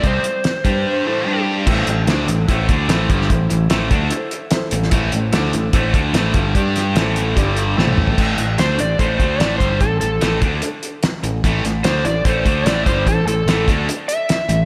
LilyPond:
<<
  \new Staff \with { instrumentName = "Electric slide guitar" } { \time 4/4 \key a \minor \tempo 4 = 147 c''2.~ c''8 r8 | r1 | r1 | r1 |
r1 | r4 c''8 d''8 c''4 d''8 c''8 | a'8 a'4 r2 r8 | r4 c''8 d''8 c''4 d''8 c''8 |
a'8 a'4 r4 e''4. | }
  \new Staff \with { instrumentName = "Upright piano" } { \time 4/4 \key a \minor r1 | <e' a' c''>4 <e' a' c''>4 <e' a' c''>4 <e' a' c''>4 | <e' a' c''>4 <e' a' c''>4 <e' a' c''>4 <e' a' c''>4 | <e' a' c''>4 <e' a' c''>4 <e' a' c''>4 <e' a' c''>4 |
<d' g' d''>4 <e' a' c''>4 <d' g' d''>4 <e' a' c''>4 | r1 | r1 | r1 |
r1 | }
  \new Staff \with { instrumentName = "Distorted electric guitar" } { \clef bass \time 4/4 \key a \minor <c g c'>8 r4 <g d' g'>4 <a, e a>8 <g d' g'>4 | <a, e a>8 <a, e>8 <d a d'>8 <a, e>8 <a, e a>8 <d a d'>8 <a, e a>8 <g, d g>8 | <a, e>8 <a, e>8 <a, e a>8 <d a d'>8 r4. <a, e>8 | <a, e a>8 <a, e>8 <d a d'>8 <a, e>8 <a, e a>8 <d a d'>8 <a, e a>8 <g, d g>8 |
<g d' g'>4 <a, e a>4 <g, d g>4 <a, e a>4 | <a, e a>8 <a, e>8 <d a d'>8 <a, e>8 <a, e a>8 <d a d'>8 <a, e a>8 <g, d g>8 | <a, e>8 <a, e>8 <a, e a>8 <d a d'>8 r4. <a, e>8 | <a, e a>8 <a, e>8 <d a d'>8 <a, e>8 <a, e a>8 <d a d'>8 <a, e a>8 <g, d g>8 |
<a, e>8 <a, e>8 <a, e a>8 <d a d'>8 r4. <a, e>8 | }
  \new Staff \with { instrumentName = "Overdriven electric guitar" } { \clef bass \time 4/4 \key a \minor <c g c'>8 r4 <g d' g'>4 <a, e a>8 <g d' g'>4 | <a, e a>8 <a, e>8 <d a d'>8 <a, e>8 <a, e a>8 <d a d'>8 <a, e a>8 <g, d g>8 | <a, e>8 <a, e>8 <a, e a>8 <d a d'>8 r4. <a, e>8 | <a, e a>8 <a, e>8 <d a d'>8 <a, e>8 <a, e a>8 <d a d'>8 <a, e a>8 <g, d g>8 |
<g d' g'>4 <a, e a>4 <g, d g>4 <a, e a>4 | <a, e a>8 <a, e>8 <d a d'>8 <a, e>8 <a, e a>8 <d a d'>8 <a, e a>8 <g, d g>8 | <a, e>8 <a, e>8 <a, e a>8 <d a d'>8 r4. <a, e>8 | <a, e a>8 <a, e>8 <d a d'>8 <a, e>8 <a, e a>8 <d a d'>8 <a, e a>8 <g, d g>8 |
<a, e>8 <a, e>8 <a, e a>8 <d a d'>8 r4. <a, e>8 | }
  \new Staff \with { instrumentName = "Fingered electric bass" } { \clef bass \time 4/4 \key a \minor c,8 r4 g,8 r2 | a,,8 a,,8 d,8 a,,8 a,,8 d,8 a,,8 g,,8 | a,,8 a,,8 a,,8 d,8 r4. a,,8 | a,,8 a,,8 d,8 a,,8 a,,8 d,8 a,,8 g,,8 |
g,4 a,,4 g,,4 a,,4 | a,,8 a,,8 d,8 a,,8 a,,8 d,8 a,,8 g,,8 | a,,8 a,,8 a,,8 d,8 r4. a,,8 | a,,8 a,,8 d,8 a,,8 a,,8 d,8 a,,8 g,,8 |
a,,8 a,,8 a,,8 d,8 r4. a,,8 | }
  \new DrumStaff \with { instrumentName = "Drums" } \drummode { \time 4/4 <hh bd>8 hh8 <hh sn>8 <hh bd>8 r4 r4 | <cymc bd>8 hh8 <hh sn>8 hh8 <hh bd>8 <hh bd>8 <hh sn>8 <hh bd>16 sn16 | <hh bd>8 hh8 <hh sn>8 <hh bd>8 hh8 hh8 <hh sn>8 hh16 sn16 | <hh bd>8 hh8 <hh sn>8 hh8 <hh bd>8 <hh bd>8 <hh sn>8 <hh bd>8 |
<hh bd>8 <hh sn>8 <hh sn>8 hh8 <hh bd>8 hh8 sn16 tommh16 toml16 tomfh16 | <cymc bd>8 hh8 <hh sn>8 hh8 <hh bd>8 <hh bd>8 <hh sn>8 <hh bd>8 | <hh bd>8 hh8 <hh sn>8 <hh bd>8 hh8 hh8 <hh sn>8 hh8 | <hh bd>8 <hh sn>8 <hh sn>8 hh8 <hh bd>8 <hh bd>8 <hh sn>8 <hh bd>8 |
<hh bd>8 hh8 <hh sn>8 <hh bd>8 hh8 hh8 <hh sn>8 hh8 | }
>>